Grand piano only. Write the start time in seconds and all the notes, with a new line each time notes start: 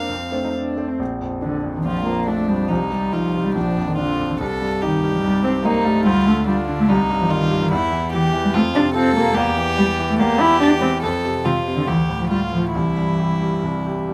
Already playing: F2 A#3 D4 A#4
0.09 F2
0.32 A3 C4 C5
0.77 A3 C4 C5
0.99 A#1
1.21 F2
1.42 D4
1.64 F2
1.85 A#1
2.07 F3
2.28 D4
2.50 F2
2.71 C2
2.92 C3
3.13 D#4
3.34 C3
3.55 A#1
3.77 F2
3.97 D4
4.19 F2
4.41 C2
4.62 G2
4.83 D#4
5.04 G2
5.24 C2
5.45 C4
5.65 D#4
5.86 G2
6.07 D2
6.28 D3
6.49 F4
6.69 D3
6.89 C2
7.10 G2
7.30 D#4
7.51 G2
7.71 E2
7.91 E3
8.12 G4
8.33 E3
8.54 F2
8.75 C3
8.96 F4
9.16 C3
9.37 E2
9.57 E3
9.79 G4
9.99 E3
10.20 E2
10.40 E3
10.61 G4
10.82 E3
11.03 F2
11.25 C3
11.46 F4
11.68 C3
11.88 D2
12.10 A2
12.31 F4
12.52 A2
12.75 C2
12.97 G2
13.20 G4
13.42 G2
13.64 C2
13.86 G4
14.09 G2